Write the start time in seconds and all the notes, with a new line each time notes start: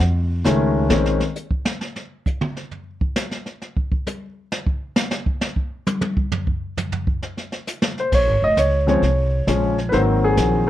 0.00 F2, brush sweep, kick, snare
0.44 C#2 D#3 G#3 A3 C#4, kick, snare, hi-hat pedal
0.89 A#1 D#3 G#3 C4 C#4, snare
1.05 snare
1.20 snare
1.36 hi-hat pedal
1.51 kick
1.65 snare
1.81 snare
1.96 snare
2.26 kick, hi-hat pedal
2.41 mid tom
2.56 snare
2.71 floor tom
3.01 kick
3.16 snare, hi-hat pedal
3.31 snare
3.46 snare
3.62 snare
3.76 kick
3.91 kick
4.07 hi-hat pedal, high tom
4.52 snare
4.66 kick
4.96 snare, hi-hat pedal
5.11 snare
5.26 kick
5.42 snare
5.57 kick
5.87 hi-hat pedal, high tom
6.01 high tom
6.17 kick
6.31 floor tom
6.47 kick
6.77 floor tom, hi-hat pedal
6.92 floor tom
7.07 kick
7.22 snare
7.37 snare
7.52 snare
7.67 snare, hi-hat pedal
7.82 snare
7.98 C5, snare
8.12 A#1 C#5, brush sweep, kick, snare, crash
8.27 G#1
8.42 F1 D#5
8.57 C#2 C#5, kick, snare, hi-hat pedal
8.87 C#3 F3 G#3 C4 C#5, snare
9.02 C2, brush sweep, kick, snare
9.47 A#1 C#3 F3 G#3 C#4, kick, snare, hi-hat pedal
9.78 snare
9.89 G#1 D#3 F#3 A#3 B4, brush sweep, kick, snare
9.93 C4 C5
10.24 G#4
10.37 A#1, kick, snare, hi-hat pedal